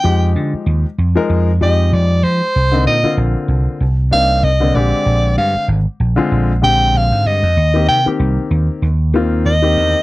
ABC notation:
X:1
M:4/4
L:1/16
Q:"Swing 16ths" 1/4=96
K:Eb
V:1 name="Soprano saxophone"
g2 z8 e2 d2 c2- | c2 e2 z6 f2 e2 d2- | d2 f2 z6 g2 f2 e2- | e2 g2 z8 e4 |]
V:2 name="Grand piano"
[F,A,EG]4- [F,A,EG] z2 [F,A,EB]2 z [F,A,EG]4- [F,A,EG] z | z [D,B,CE] z [D,B,CF]4- [D,B,CF] z2 [B,CDE]2 z [D,B,CD] [D,A,CG]2- | [D,A,CG]4 z3 [D,A,CF]2 z [D,A,CG]4- [D,A,CG] z | z [E,B,CG] z [E,B,CG]4- [E,B,CG] z2 [E,B,CF]2 z [E,B,CG]2 z |]
V:3 name="Slap bass" clef=bass
F,,2 D, z E,, z F,, z F,,2 F,,2 F,,2 F, z | C,,2 B,, z B,,, z C,, z C,,2 C,,2 C,,2 B,,, z | B,,,2 G,, z A,,, z B,,, z B,,,2 B,,,2 B,,, A,, G,, F,, | E,,2 C, z C,, z E,, z E,,2 E,,2 E,,2 _F,, z |]